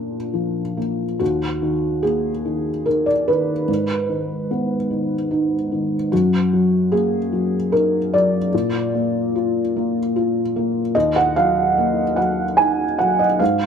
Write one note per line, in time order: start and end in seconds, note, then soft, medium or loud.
0.00 1.16 A#2 soft
0.00 0.77 A#3 soft
0.00 0.16 D4 soft
0.00 0.77 F4 soft
0.34 1.04 F3 soft
0.77 1.20 A#3 soft
1.19 3.65 D#2 soft
1.19 2.03 F#4 soft
1.62 2.29 D#3 soft
2.03 2.70 A#3 soft
2.03 2.86 G#4 medium
2.45 3.11 D#3 soft
2.86 3.52 D#4 soft
2.86 3.07 A#4 medium
3.06 3.27 D5 soft
3.28 3.69 D#3 soft
3.28 6.12 B4 medium
3.68 6.07 G#2 soft
4.09 4.75 D#3 soft
4.51 5.15 B3 soft
4.91 5.55 D#3 soft
5.31 5.95 D#4 soft
5.72 6.12 D#3 soft
6.12 8.49 F#2 soft
6.12 6.92 F#4 medium
6.53 7.16 F#3 soft
6.92 7.56 A#3 soft
6.92 7.72 G#4 medium
7.33 7.97 F#3 soft
7.72 8.37 D#4 soft
7.72 8.12 A#4 medium
8.13 8.54 F#3 soft
8.13 10.96 D5 medium
8.54 10.92 A#2 soft
8.95 9.59 A#3 soft
9.36 9.99 F4 soft
9.76 10.40 A#3 soft
10.16 10.80 F4 soft
10.56 10.96 A#3 soft
10.95 13.37 D#2 soft
10.95 11.15 D#5 medium
11.16 11.36 F#5 medium
11.36 12.01 F#3 soft
11.36 12.17 F5 medium
11.78 12.42 A#3 soft
12.16 12.83 F#3 soft
12.16 12.57 F#5 medium
12.57 13.24 D#4 soft
12.57 12.98 G#5 medium
12.98 13.41 F#3 soft
12.98 13.19 F#5 medium
13.19 13.40 D#5 medium
13.39 13.66 G#2 soft
13.39 13.66 F5 medium